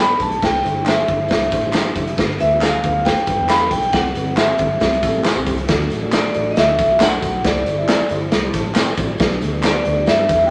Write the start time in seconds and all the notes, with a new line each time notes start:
Already playing: G2 D3 A3 B3 G4
0.00 B3 G4 A4 D5 B5
0.10 D4 G4 A4 B4
0.20 B1 A5, kick, closed hi-hat, tambourine
0.32 closed hi-hat
0.42 C2 G3 C4 D4 E4 G4 C5 G5, kick, snare
0.55 snare
0.63 G1 D4 E4 G4 C5, closed hi-hat, tambourine
0.86 D4 G4 C5 E5, snare, clap, tambourine
0.97 D4 E4 G4 C5
1.08 G1, kick, closed hi-hat
1.28 C2 D4 E4 G4 C5, kick, snare, tambourine
1.42 closed hi-hat
1.51 A1 D4 E4 G4 C5, kick, closed hi-hat, tambourine
1.73 D4 G4 C5 E5 G5, snare, clap, tambourine
1.84 D4 E4 G4 C5
1.96 F#1 E5, kick, closed hi-hat, tambourine
2.07 closed hi-hat
2.17 G1 B3 D4 F4 G4 B4, kick, snare, tambourine
2.30 snare
2.39 D2 D4 F4 G4 B4 E5, closed hi-hat, tambourine
2.61 D4 G4 B4 F5, snare, clap, tambourine
2.72 D4 F4 G4 B4
2.83 D2, kick, closed hi-hat, tambourine
3.05 D4 F4 G4 B4 G5, kick, snare, tambourine
3.17 closed hi-hat
3.26 G2 D4 F4 G4 B4, kick, closed hi-hat, tambourine
3.39 E2
3.49 D4 G4 B4 F5 B5, snare, clap, tambourine
3.60 D4 F4 G4 A4
3.71 B1 G5, kick, closed hi-hat, tambourine
3.82 closed hi-hat
3.92 C2 E3 C4 E4 G4 C5 F#5, kick, snare, tambourine
4.04 snare
4.15 G1 C4 E4 G4 B4, closed hi-hat, tambourine
4.37 E4 G4 C5 E5, snare, clap, tambourine
4.48 C4 E4 G4 C5
4.58 G1, kick, closed hi-hat, tambourine
4.80 C2 C4 E4 G4 C5, kick, snare, tambourine
4.93 closed hi-hat
5.02 A1 C4 E4 G4 A4, kick, closed hi-hat, tambourine
5.24 E4 G4 C5 E5, snare, clap, tambourine
5.35 B1 C4 E4 G4 C5
5.47 C2, kick, closed hi-hat, tambourine
5.57 closed hi-hat
5.68 D2 D3 F#3 A3 D4 F#4 A4 D5, kick, snare, closed hi-hat
5.80 snare
5.90 A1, closed hi-hat, tambourine
6.02 D4 F#4 A4 D5
6.12 D4 F#4 A4 D5, snare, clap, closed hi-hat, tambourine
6.34 A1 D4 F#4 A4 D5, closed hi-hat
6.51 D#5
6.56 D2 E5, snare, closed hi-hat, tambourine
6.68 D4 F#4 A4 D5
6.78 B1, kick, closed hi-hat, tambourine
7.00 D4 F#4 A4 C5 D5 F#5, snare, clap, closed hi-hat, tambourine
7.22 B1, kick, closed hi-hat, tambourine
7.44 C2 G3 C4 E4 G4 C5 D5, kick, snare, closed hi-hat, tambourine
7.56 snare
7.66 G1, closed hi-hat, tambourine
7.77 E4 G4 C5 E5
7.88 C4 E4 G4 D5, snare, clap, closed hi-hat, tambourine
8.00 muted fingered electric bass stroke
8.09 G1 E4 G4 C5 D5, closed hi-hat, tambourine
8.31 C2, snare, closed hi-hat, tambourine
8.43 E4 G4 C5 D5
8.53 A1 C5 A5, kick, closed hi-hat, tambourine
8.75 C4 E4 G4 B4 D5 G5, snare, clap, closed hi-hat, tambourine
8.97 A1 C4 E4 F#4 G4 D5, kick, closed hi-hat, tambourine
9.18 B1 G3 B3 D4 G4 B4 D5, kick, snare, closed hi-hat, tambourine
9.31 snare
9.41 D2, closed hi-hat, tambourine
9.52 D4 G4 B4 D5
9.63 D4 G4 B4 D5, snare, clap, closed hi-hat, tambourine
9.85 D2 D4 G4 B4 D5, closed hi-hat, tambourine
10.06 G2 E5, snare, closed hi-hat, tambourine
10.18 D4 G4 B4 E5
10.29 E2, kick, closed hi-hat, tambourine
10.46 G5